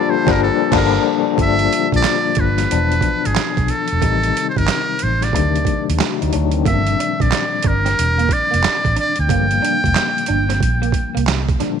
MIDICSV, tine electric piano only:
0, 0, Header, 1, 2, 480
1, 0, Start_track
1, 0, Tempo, 659341
1, 1003, Time_signature, 4, 2, 24, 8
1, 8590, End_track
2, 0, Start_track
2, 0, Title_t, "Tine electric piano"
2, 0, Program_c, 0, 4
2, 0, Control_c, 0, 64, 127
2, 0, Note_on_c, 0, 46, 96
2, 0, Note_on_c, 0, 50, 91
2, 0, Note_on_c, 0, 53, 95
2, 0, Note_on_c, 0, 55, 95
2, 0, Note_on_c, 0, 62, 101
2, 194, Note_off_c, 0, 46, 0
2, 194, Note_on_c, 0, 46, 99
2, 197, Note_off_c, 0, 50, 0
2, 197, Note_on_c, 0, 50, 102
2, 200, Note_off_c, 0, 53, 0
2, 200, Note_on_c, 0, 53, 103
2, 205, Note_off_c, 0, 55, 0
2, 205, Note_on_c, 0, 55, 95
2, 208, Note_off_c, 0, 62, 0
2, 208, Note_on_c, 0, 62, 103
2, 347, Note_off_c, 0, 46, 0
2, 348, Note_off_c, 0, 50, 0
2, 351, Note_off_c, 0, 53, 0
2, 353, Note_off_c, 0, 55, 0
2, 355, Note_off_c, 0, 62, 0
2, 522, Note_on_c, 0, 46, 95
2, 524, Note_on_c, 0, 50, 99
2, 528, Note_on_c, 0, 53, 98
2, 530, Note_on_c, 0, 55, 99
2, 535, Note_on_c, 0, 62, 100
2, 697, Note_off_c, 0, 46, 0
2, 698, Note_off_c, 0, 50, 0
2, 700, Note_off_c, 0, 53, 0
2, 702, Note_off_c, 0, 55, 0
2, 704, Note_off_c, 0, 62, 0
2, 996, Note_on_c, 0, 46, 61
2, 1003, Note_on_c, 0, 50, 57
2, 1009, Note_on_c, 0, 53, 57
2, 1012, Control_c, 0, 64, 0
2, 1022, Note_on_c, 0, 62, 67
2, 1137, Control_c, 0, 64, 127
2, 1940, Note_off_c, 0, 46, 0
2, 1944, Note_off_c, 0, 50, 0
2, 1947, Note_off_c, 0, 53, 0
2, 1953, Note_off_c, 0, 62, 0
2, 1953, Note_on_c, 0, 47, 59
2, 1962, Note_on_c, 0, 52, 55
2, 1969, Note_on_c, 0, 53, 55
2, 1972, Control_c, 0, 64, 0
2, 1973, Note_on_c, 0, 59, 54
2, 1980, Note_on_c, 0, 62, 70
2, 2092, Control_c, 0, 64, 127
2, 2899, Note_off_c, 0, 47, 0
2, 2903, Note_off_c, 0, 52, 0
2, 2907, Note_off_c, 0, 53, 0
2, 2909, Note_off_c, 0, 59, 0
2, 2912, Note_off_c, 0, 62, 0
2, 2918, Note_on_c, 0, 48, 63
2, 2923, Note_on_c, 0, 51, 59
2, 2930, Note_on_c, 0, 55, 56
2, 2932, Control_c, 0, 64, 0
2, 2937, Note_on_c, 0, 60, 57
2, 2943, Note_on_c, 0, 63, 69
2, 3069, Control_c, 0, 64, 127
2, 3861, Note_off_c, 0, 48, 0
2, 3864, Note_off_c, 0, 51, 0
2, 3868, Note_off_c, 0, 55, 0
2, 3871, Note_off_c, 0, 60, 0
2, 3874, Note_off_c, 0, 63, 0
2, 3876, Note_on_c, 0, 48, 61
2, 3882, Note_on_c, 0, 51, 56
2, 3889, Note_on_c, 0, 54, 52
2, 3892, Control_c, 0, 64, 0
2, 3896, Note_on_c, 0, 57, 58
2, 3902, Note_on_c, 0, 62, 66
2, 4041, Control_c, 0, 64, 127
2, 4353, Note_off_c, 0, 51, 0
2, 4357, Note_off_c, 0, 54, 0
2, 4360, Note_off_c, 0, 57, 0
2, 4363, Note_off_c, 0, 62, 0
2, 4367, Note_on_c, 0, 66, 57
2, 4372, Note_on_c, 0, 57, 48
2, 4510, Note_off_c, 0, 66, 0
2, 4513, Note_off_c, 0, 57, 0
2, 4519, Note_on_c, 0, 63, 73
2, 4524, Note_on_c, 0, 54, 59
2, 4601, Note_off_c, 0, 63, 0
2, 4602, Note_off_c, 0, 54, 0
2, 4608, Note_on_c, 0, 62, 65
2, 4610, Note_on_c, 0, 54, 55
2, 4751, Note_off_c, 0, 62, 0
2, 4752, Note_off_c, 0, 54, 0
2, 4756, Note_on_c, 0, 60, 57
2, 4762, Note_on_c, 0, 51, 50
2, 4820, Note_off_c, 0, 48, 0
2, 4832, Note_on_c, 0, 46, 60
2, 4838, Note_on_c, 0, 50, 61
2, 4845, Note_on_c, 0, 53, 54
2, 4850, Note_on_c, 0, 55, 58
2, 4852, Control_c, 0, 64, 0
2, 4856, Note_on_c, 0, 61, 56
2, 4906, Note_on_c, 0, 62, 67
2, 4910, Note_off_c, 0, 61, 0
2, 4984, Note_off_c, 0, 60, 0
2, 4986, Control_c, 0, 64, 127
2, 4987, Note_off_c, 0, 51, 0
2, 6729, Note_off_c, 0, 46, 0
2, 6731, Note_off_c, 0, 50, 0
2, 6735, Note_off_c, 0, 53, 0
2, 6738, Note_off_c, 0, 55, 0
2, 6756, Note_on_c, 0, 46, 62
2, 6762, Note_on_c, 0, 50, 56
2, 6766, Note_off_c, 0, 62, 0
2, 6769, Note_on_c, 0, 53, 59
2, 6776, Note_on_c, 0, 55, 58
2, 6782, Note_on_c, 0, 58, 71
2, 8411, Note_off_c, 0, 46, 0
2, 8413, Note_off_c, 0, 50, 0
2, 8417, Note_off_c, 0, 53, 0
2, 8420, Note_off_c, 0, 55, 0
2, 8424, Note_off_c, 0, 58, 0
2, 8445, Note_on_c, 0, 46, 53
2, 8449, Note_on_c, 0, 50, 51
2, 8450, Note_on_c, 0, 53, 49
2, 8454, Note_on_c, 0, 55, 49
2, 8459, Note_on_c, 0, 62, 61
2, 8590, Note_off_c, 0, 46, 0
2, 8590, Note_off_c, 0, 50, 0
2, 8590, Note_off_c, 0, 53, 0
2, 8590, Note_off_c, 0, 55, 0
2, 8590, Note_off_c, 0, 62, 0
2, 8590, End_track
0, 0, End_of_file